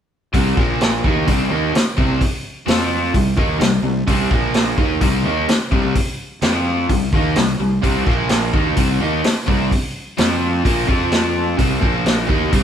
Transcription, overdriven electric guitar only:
0.33 C3 G3 C4
0.57 A#2 F3 A#3
1.05 D#3 A#3 D#4
1.27 C3 G3 C4
1.50 D#3 A#3 D#4
1.74 muted overdriven electric guitar stroke
1.97 C3 G3 C4
2.67 F3 C4 F4
3.14 C3 G3
3.37 D#3 A#3 D#4
3.60 C3 G3
3.84 C3 G3
4.07 C3 G3 C4
4.31 A#2 F3 A#3
4.77 D#3 A#3 D#4
5.01 C3 G3 C4
5.25 D#3 A#3 D#4
5.49 muted overdriven electric guitar stroke
5.72 C3 G3 C4
6.42 F3 C4 F4
6.90 C3 G3
7.14 D#3 A#3 D#4
7.36 C3 G3
7.60 C3 G3
7.82 C3 G3 C4
8.06 A#2 F3 A#3
8.53 D#3 A#3 D#4
8.77 C3 G3 C4
9.01 D#3 A#3 D#4
9.24 muted overdriven electric guitar stroke
9.47 C3 G3 C4
10.17 F3 C4 F4
10.64 A#2 F3 A#3
10.87 F3 C4 F4
11.57 C3 G3 C4
11.80 A#2 F3 A#3
12.27 D#3 A#3 D#4
12.51 C3 G3 C4

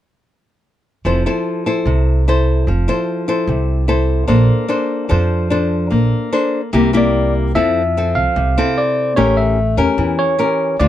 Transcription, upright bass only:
1.05 F1
1.86 C2
2.67 F1
3.47 C2
4.29 A#1
5.11 F2
5.92 A#1
6.73 C2
7.55 F2
8.15 C2
8.36 C2
9.17 A1
9.77 E2
9.98 E2
10.80 D2

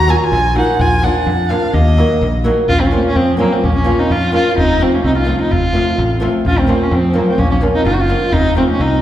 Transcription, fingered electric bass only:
Already playing: D#2
0.32 A#1
0.79 A#1
1.27 F2
1.73 D#2
2.21 A#1
2.68 A#1
3.16 F2
3.63 A#1
4.10 F2
4.57 F1
5.04 C2
5.51 F1
5.98 A1
6.45 A#1
6.91 F2
7.38 A#1
7.85 F#1
8.32 F1
8.79 C2

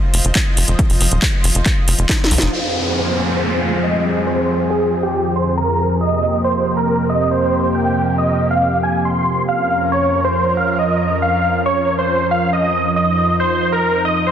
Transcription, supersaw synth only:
2.53 F5
2.96 C5
3.29 C5
3.62 F5
3.83 D#5
4.27 C5
4.70 G#4
5.03 G4
5.36 C5
5.57 A#4
6.01 D#5
6.44 C5
6.77 A#4
7.09 D#5
7.31 C5
7.75 G5
8.18 D#5
8.51 F5
8.83 G#5
9.05 C6
9.49 F5
9.92 C#5
10.24 C5
10.57 F5
10.79 D#5
11.22 F5
11.66 C#5
11.98 C5
12.31 F5
12.53 D#5
12.96 D#5
13.40 C5
13.72 A#4
14.05 D#5
14.27 C5

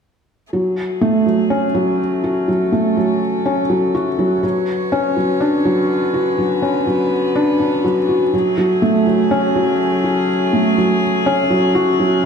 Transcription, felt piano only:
0.53 F#3
1.01 A3
1.26 F#3
1.50 C#4
1.74 F#3
2.24 F#4
2.48 F#3
2.72 A3
2.97 F#3
3.46 C#4
3.70 F#3
3.95 F#4
4.19 F#3
4.43 F#3
4.92 C#4
5.17 F#3
5.40 D4
5.65 F#3
6.14 F#4
6.38 F#3
6.62 C#4
6.87 F#3
7.36 D4
7.60 D4
7.84 F#3
8.09 F#4
8.34 F#3
8.58 F#3
8.82 A3
9.07 F#3
9.31 C#4
9.56 F#3
10.04 F#4
10.53 A3
10.77 F#3
11.26 C#4
11.50 F#3
11.75 F#4
12.00 F#3

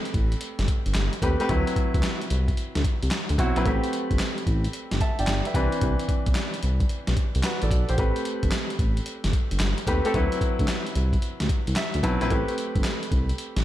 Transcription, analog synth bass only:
0.14 A1
0.59 G1
0.86 G1
0.95 G1
1.22 D#2
1.50 D2
1.95 D2
2.31 C2
2.76 D2
3.03 C2
3.30 D2
3.38 B1
3.57 A#1
3.66 A1
4.11 G1
4.47 A1
4.92 G1
5.19 G1
5.28 G1
5.55 C2
5.82 C2
6.27 B1
6.63 C2
7.08 B1
7.35 C2
7.62 A1
7.71 B1
7.89 A#1
7.98 A1
8.43 G1
8.79 A1
9.24 G1
9.52 G1
9.61 G1
9.87 D#2
10.14 D2
10.59 D2
10.96 C2
11.41 D2
11.68 C2
11.95 D2
12.03 B1
12.22 A#1
12.31 A1
12.76 G1
13.12 C2
13.57 A1

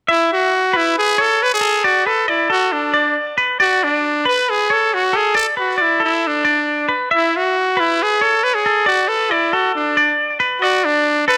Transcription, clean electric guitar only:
0.08 E5
0.73 B4
1.18 C#5
1.61 A4
1.84 D5
2.06 B4
2.28 D5
2.50 A4
2.94 D5
3.38 B4
3.60 D5
4.25 B4
4.70 C#5
5.13 A4
5.35 D5
5.57 B4
5.78 D5
6.00 A4
6.45 D5
6.89 B4
7.11 E5
7.77 B4
8.21 C#5
8.66 A4
8.86 D5
9.08 B4
9.31 D5
9.53 A4
9.97 D5
10.40 B4
10.62 D5
11.28 A4

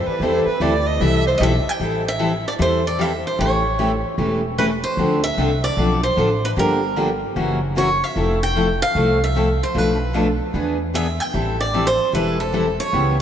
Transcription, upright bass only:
0.07 muted upright bass stroke
0.20 E2
0.46 muted upright bass stroke
0.60 D2
1.00 C2
1.40 B1
1.66 muted upright bass stroke
1.80 A1
2.60 E2
3.39 A1
4.18 E1
4.97 D2
5.37 C2
5.77 B1
6.17 A1
6.57 G1
7.36 F#1
8.16 F1
8.95 C2
9.75 B1
10.54 E2
11.34 A1
12.13 E1
12.93 C#2

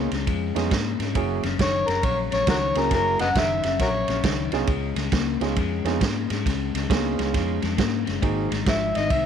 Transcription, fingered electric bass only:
0.11 C#2
0.27 F2
0.55 F2
0.72 G#2
0.99 G#2
1.15 F#1
1.44 F#1
1.59 F#1
1.88 F#1
2.03 A#1
2.33 A#1
2.47 C#2
2.76 C#2
2.91 F#1
3.20 F#1
3.36 F#1
3.64 F#1
3.79 A#1
4.08 A#1
4.24 C#2
4.52 C2
4.68 C#2
4.96 C#2
5.12 C#2
5.40 C#2
5.57 F2
5.84 F2
6.01 G#2
6.30 G#2
6.46 C#2
6.74 C#2
6.90 C#2
7.19 C#2
7.34 F2
7.63 F2
7.78 G#2
8.08 F#1
8.23 G#1
8.51 G#1
8.66 G#1
8.96 G#1
9.10 C2

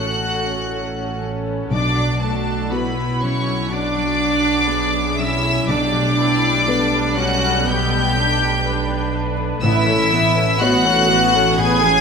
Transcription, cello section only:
Already playing: F#4
1.72 D4
2.22 A3
2.71 B3
3.21 C#4
3.71 D4
5.20 E4
5.69 D4
7.18 F#4
7.68 G4
9.64 E4
10.60 F#4
11.59 G#4

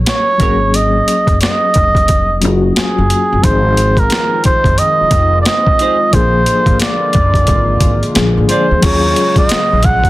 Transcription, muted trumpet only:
0.09 C#5
0.76 D#5
1.42 D#5
2.77 G#4
3.44 C5
3.99 A#4
4.46 C5
4.79 D#5
5.42 D5
5.46 D#5
6.14 C5
6.81 D5
8.50 C5
8.84 C#5
9.38 D#5
9.85 F#5

